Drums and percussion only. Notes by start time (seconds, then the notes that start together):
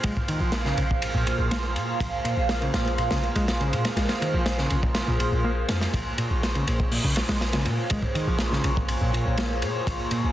0.04 kick, ride
0.17 kick
0.28 ride
0.52 snare, ride
0.65 snare
0.77 ride
0.91 kick
1.02 ride
1.27 ride
1.51 snare, ride
1.76 ride
2.00 kick, ride
2.25 ride
2.49 snare, ride
2.62 ride
2.74 snare, ride
2.87 ride
2.98 ride
3.11 snare, ride
3.23 ride
3.35 ride
3.48 snare, ride
3.61 ride
3.73 ride
3.85 snare, ride
3.97 snare, ride
4.09 snare, ride
4.22 ride
4.46 snare, ride
4.58 snare
4.70 ride
4.83 kick
4.95 snare, ride
5.20 ride
5.69 snare, ride
5.81 snare, ride
5.94 kick, ride
6.18 ride
6.43 snare, ride
6.55 ride
6.67 ride
6.80 kick
6.92 open hi-hat
7.16 snare, ride
7.29 snare, ride
7.41 snare, ride
7.53 snare, ride
7.65 ride
7.90 kick, ride
8.03 kick
8.15 ride
8.39 snare, ride
8.53 snare
8.64 ride
8.77 kick
8.88 ride
9.14 ride
9.38 snare, ride
9.62 ride
9.87 kick, ride
10.11 ride